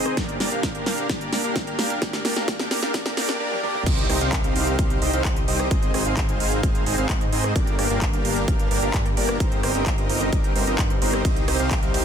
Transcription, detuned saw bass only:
0, 0, Header, 1, 2, 480
1, 0, Start_track
1, 0, Key_signature, -3, "minor"
1, 0, Tempo, 461538
1, 179, Time_signature, 4, 2, 24, 8
1, 12530, End_track
2, 0, Start_track
2, 0, Title_t, "Detuned saw bass"
2, 0, Program_c, 0, 39
2, 4019, Note_on_c, 0, 36, 97
2, 4235, Note_off_c, 0, 36, 0
2, 4259, Note_on_c, 0, 36, 97
2, 4355, Note_off_c, 0, 36, 0
2, 4379, Note_on_c, 0, 36, 97
2, 4595, Note_off_c, 0, 36, 0
2, 4618, Note_on_c, 0, 36, 100
2, 4715, Note_off_c, 0, 36, 0
2, 4739, Note_on_c, 0, 36, 94
2, 4955, Note_off_c, 0, 36, 0
2, 4980, Note_on_c, 0, 36, 102
2, 5195, Note_off_c, 0, 36, 0
2, 5219, Note_on_c, 0, 36, 104
2, 5315, Note_off_c, 0, 36, 0
2, 5340, Note_on_c, 0, 36, 98
2, 5436, Note_off_c, 0, 36, 0
2, 5459, Note_on_c, 0, 36, 96
2, 5675, Note_off_c, 0, 36, 0
2, 5700, Note_on_c, 0, 36, 99
2, 5915, Note_off_c, 0, 36, 0
2, 5939, Note_on_c, 0, 32, 96
2, 6155, Note_off_c, 0, 32, 0
2, 6179, Note_on_c, 0, 32, 96
2, 6275, Note_off_c, 0, 32, 0
2, 6300, Note_on_c, 0, 32, 100
2, 6515, Note_off_c, 0, 32, 0
2, 6540, Note_on_c, 0, 32, 102
2, 6635, Note_off_c, 0, 32, 0
2, 6659, Note_on_c, 0, 32, 99
2, 6875, Note_off_c, 0, 32, 0
2, 6899, Note_on_c, 0, 32, 101
2, 7115, Note_off_c, 0, 32, 0
2, 7139, Note_on_c, 0, 32, 107
2, 7235, Note_off_c, 0, 32, 0
2, 7259, Note_on_c, 0, 32, 98
2, 7355, Note_off_c, 0, 32, 0
2, 7379, Note_on_c, 0, 44, 95
2, 7595, Note_off_c, 0, 44, 0
2, 7619, Note_on_c, 0, 44, 102
2, 7835, Note_off_c, 0, 44, 0
2, 7859, Note_on_c, 0, 31, 94
2, 8075, Note_off_c, 0, 31, 0
2, 8098, Note_on_c, 0, 31, 93
2, 8195, Note_off_c, 0, 31, 0
2, 8218, Note_on_c, 0, 31, 101
2, 8435, Note_off_c, 0, 31, 0
2, 8458, Note_on_c, 0, 31, 100
2, 8555, Note_off_c, 0, 31, 0
2, 8578, Note_on_c, 0, 31, 98
2, 8795, Note_off_c, 0, 31, 0
2, 8818, Note_on_c, 0, 31, 101
2, 9035, Note_off_c, 0, 31, 0
2, 9058, Note_on_c, 0, 31, 108
2, 9155, Note_off_c, 0, 31, 0
2, 9179, Note_on_c, 0, 31, 98
2, 9275, Note_off_c, 0, 31, 0
2, 9299, Note_on_c, 0, 43, 98
2, 9515, Note_off_c, 0, 43, 0
2, 9538, Note_on_c, 0, 31, 97
2, 9755, Note_off_c, 0, 31, 0
2, 9779, Note_on_c, 0, 31, 96
2, 9995, Note_off_c, 0, 31, 0
2, 10018, Note_on_c, 0, 31, 95
2, 10115, Note_off_c, 0, 31, 0
2, 10139, Note_on_c, 0, 31, 99
2, 10355, Note_off_c, 0, 31, 0
2, 10379, Note_on_c, 0, 31, 94
2, 10475, Note_off_c, 0, 31, 0
2, 10498, Note_on_c, 0, 31, 95
2, 10715, Note_off_c, 0, 31, 0
2, 10739, Note_on_c, 0, 31, 101
2, 10955, Note_off_c, 0, 31, 0
2, 10978, Note_on_c, 0, 31, 100
2, 11075, Note_off_c, 0, 31, 0
2, 11098, Note_on_c, 0, 31, 97
2, 11195, Note_off_c, 0, 31, 0
2, 11219, Note_on_c, 0, 43, 93
2, 11435, Note_off_c, 0, 43, 0
2, 11458, Note_on_c, 0, 31, 96
2, 11675, Note_off_c, 0, 31, 0
2, 11699, Note_on_c, 0, 36, 95
2, 11915, Note_off_c, 0, 36, 0
2, 11938, Note_on_c, 0, 36, 95
2, 12035, Note_off_c, 0, 36, 0
2, 12058, Note_on_c, 0, 36, 100
2, 12275, Note_off_c, 0, 36, 0
2, 12298, Note_on_c, 0, 36, 97
2, 12395, Note_off_c, 0, 36, 0
2, 12418, Note_on_c, 0, 36, 94
2, 12530, Note_off_c, 0, 36, 0
2, 12530, End_track
0, 0, End_of_file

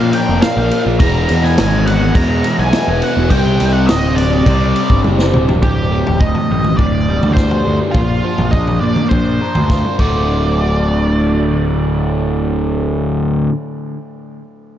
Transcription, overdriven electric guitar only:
0, 0, Header, 1, 2, 480
1, 0, Start_track
1, 0, Tempo, 576923
1, 838, Time_signature, 4, 2, 24, 8
1, 4680, Tempo, 583658
1, 12211, End_track
2, 0, Start_track
2, 0, Title_t, "Overdriven electric guitar"
2, 0, Program_c, 0, 29
2, 0, Note_on_c, 0, 46, 77
2, 0, Note_on_c, 0, 53, 92
2, 0, Note_on_c, 0, 58, 91
2, 0, Note_on_c, 0, 62, 94
2, 0, Note_on_c, 0, 65, 100
2, 0, Note_on_c, 0, 70, 94
2, 818, Note_off_c, 0, 46, 0
2, 821, Note_off_c, 0, 53, 0
2, 824, Note_off_c, 0, 58, 0
2, 827, Note_off_c, 0, 62, 0
2, 829, Note_on_c, 0, 40, 102
2, 830, Note_off_c, 0, 65, 0
2, 832, Note_off_c, 0, 70, 0
2, 835, Note_on_c, 0, 47, 96
2, 843, Note_on_c, 0, 52, 107
2, 848, Note_on_c, 0, 56, 105
2, 853, Note_on_c, 0, 59, 98
2, 855, Note_on_c, 0, 64, 107
2, 1775, Note_off_c, 0, 40, 0
2, 1777, Note_off_c, 0, 47, 0
2, 1784, Note_off_c, 0, 52, 0
2, 1785, Note_on_c, 0, 40, 88
2, 1787, Note_off_c, 0, 56, 0
2, 1787, Note_on_c, 0, 47, 89
2, 1789, Note_off_c, 0, 59, 0
2, 1791, Note_off_c, 0, 64, 0
2, 1796, Note_on_c, 0, 52, 84
2, 1803, Note_on_c, 0, 56, 89
2, 1806, Note_on_c, 0, 59, 96
2, 1811, Note_on_c, 0, 64, 107
2, 2735, Note_off_c, 0, 40, 0
2, 2736, Note_off_c, 0, 47, 0
2, 2741, Note_off_c, 0, 52, 0
2, 2744, Note_off_c, 0, 56, 0
2, 2746, Note_off_c, 0, 59, 0
2, 2748, Note_off_c, 0, 64, 0
2, 2752, Note_on_c, 0, 48, 98
2, 2757, Note_on_c, 0, 55, 97
2, 2764, Note_on_c, 0, 60, 108
2, 2767, Note_on_c, 0, 67, 107
2, 2776, Note_on_c, 0, 72, 103
2, 3699, Note_off_c, 0, 48, 0
2, 3702, Note_off_c, 0, 55, 0
2, 3706, Note_off_c, 0, 60, 0
2, 3707, Note_off_c, 0, 67, 0
2, 3708, Note_on_c, 0, 48, 85
2, 3712, Note_off_c, 0, 72, 0
2, 3717, Note_on_c, 0, 55, 80
2, 3722, Note_on_c, 0, 60, 89
2, 3729, Note_on_c, 0, 67, 86
2, 3736, Note_on_c, 0, 72, 98
2, 4660, Note_off_c, 0, 48, 0
2, 4665, Note_off_c, 0, 55, 0
2, 4668, Note_off_c, 0, 60, 0
2, 4671, Note_off_c, 0, 67, 0
2, 4675, Note_off_c, 0, 72, 0
2, 4687, Note_on_c, 0, 38, 76
2, 4923, Note_on_c, 0, 45, 68
2, 5150, Note_off_c, 0, 45, 0
2, 5160, Note_on_c, 0, 45, 68
2, 5392, Note_off_c, 0, 38, 0
2, 5402, Note_on_c, 0, 38, 68
2, 5618, Note_off_c, 0, 45, 0
2, 5628, Note_on_c, 0, 45, 69
2, 5880, Note_on_c, 0, 55, 69
2, 6116, Note_on_c, 0, 50, 68
2, 6345, Note_off_c, 0, 38, 0
2, 6355, Note_on_c, 0, 38, 72
2, 6589, Note_off_c, 0, 38, 0
2, 6589, Note_off_c, 0, 45, 0
2, 6592, Note_on_c, 0, 46, 78
2, 6594, Note_off_c, 0, 50, 0
2, 6595, Note_off_c, 0, 55, 0
2, 6835, Note_on_c, 0, 53, 74
2, 7075, Note_on_c, 0, 62, 78
2, 7318, Note_on_c, 0, 58, 71
2, 7552, Note_off_c, 0, 62, 0
2, 7562, Note_on_c, 0, 62, 69
2, 7792, Note_off_c, 0, 46, 0
2, 7796, Note_on_c, 0, 70, 67
2, 8034, Note_off_c, 0, 53, 0
2, 8041, Note_on_c, 0, 65, 64
2, 8260, Note_on_c, 0, 38, 80
2, 8271, Note_on_c, 0, 45, 77
2, 8275, Note_off_c, 0, 70, 0
2, 8276, Note_off_c, 0, 58, 0
2, 8277, Note_off_c, 0, 65, 0
2, 8278, Note_off_c, 0, 62, 0
2, 8279, Note_on_c, 0, 50, 88
2, 8289, Note_on_c, 0, 57, 86
2, 8293, Note_on_c, 0, 66, 96
2, 11163, Note_off_c, 0, 38, 0
2, 11174, Note_off_c, 0, 45, 0
2, 11182, Note_off_c, 0, 50, 0
2, 11192, Note_off_c, 0, 57, 0
2, 11196, Note_off_c, 0, 66, 0
2, 12211, End_track
0, 0, End_of_file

